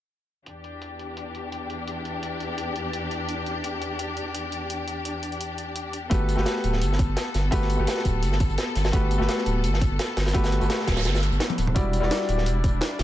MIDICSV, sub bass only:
0, 0, Header, 1, 2, 480
1, 0, Start_track
1, 0, Tempo, 352941
1, 631, Time_signature, 4, 2, 24, 8
1, 17724, End_track
2, 0, Start_track
2, 0, Title_t, "Sub bass"
2, 0, Program_c, 0, 38
2, 8309, Note_on_c, 0, 31, 94
2, 8657, Note_off_c, 0, 31, 0
2, 8675, Note_on_c, 0, 31, 88
2, 8778, Note_off_c, 0, 31, 0
2, 9030, Note_on_c, 0, 26, 90
2, 9269, Note_on_c, 0, 31, 92
2, 9289, Note_off_c, 0, 26, 0
2, 9616, Note_off_c, 0, 31, 0
2, 9636, Note_on_c, 0, 31, 81
2, 9739, Note_off_c, 0, 31, 0
2, 9990, Note_on_c, 0, 31, 93
2, 10208, Note_off_c, 0, 31, 0
2, 10228, Note_on_c, 0, 31, 95
2, 10576, Note_off_c, 0, 31, 0
2, 10597, Note_on_c, 0, 31, 92
2, 10699, Note_off_c, 0, 31, 0
2, 10949, Note_on_c, 0, 26, 89
2, 11189, Note_on_c, 0, 31, 94
2, 11209, Note_off_c, 0, 26, 0
2, 11536, Note_off_c, 0, 31, 0
2, 11556, Note_on_c, 0, 31, 83
2, 11659, Note_off_c, 0, 31, 0
2, 11910, Note_on_c, 0, 31, 91
2, 12128, Note_off_c, 0, 31, 0
2, 12149, Note_on_c, 0, 31, 99
2, 12496, Note_off_c, 0, 31, 0
2, 12517, Note_on_c, 0, 31, 90
2, 12619, Note_off_c, 0, 31, 0
2, 12868, Note_on_c, 0, 26, 91
2, 13109, Note_on_c, 0, 31, 92
2, 13130, Note_off_c, 0, 26, 0
2, 13457, Note_off_c, 0, 31, 0
2, 13478, Note_on_c, 0, 31, 83
2, 13579, Note_off_c, 0, 31, 0
2, 13830, Note_on_c, 0, 31, 89
2, 14048, Note_off_c, 0, 31, 0
2, 14070, Note_on_c, 0, 31, 99
2, 14417, Note_off_c, 0, 31, 0
2, 14437, Note_on_c, 0, 31, 90
2, 14539, Note_off_c, 0, 31, 0
2, 14791, Note_on_c, 0, 26, 91
2, 15031, Note_on_c, 0, 31, 95
2, 15052, Note_off_c, 0, 26, 0
2, 15378, Note_off_c, 0, 31, 0
2, 15396, Note_on_c, 0, 31, 82
2, 15499, Note_off_c, 0, 31, 0
2, 15752, Note_on_c, 0, 26, 75
2, 15969, Note_off_c, 0, 26, 0
2, 15990, Note_on_c, 0, 28, 103
2, 16337, Note_off_c, 0, 28, 0
2, 16358, Note_on_c, 0, 28, 90
2, 16460, Note_off_c, 0, 28, 0
2, 16710, Note_on_c, 0, 26, 91
2, 16950, Note_on_c, 0, 28, 95
2, 16970, Note_off_c, 0, 26, 0
2, 17297, Note_off_c, 0, 28, 0
2, 17317, Note_on_c, 0, 28, 84
2, 17419, Note_off_c, 0, 28, 0
2, 17669, Note_on_c, 0, 28, 93
2, 17724, Note_off_c, 0, 28, 0
2, 17724, End_track
0, 0, End_of_file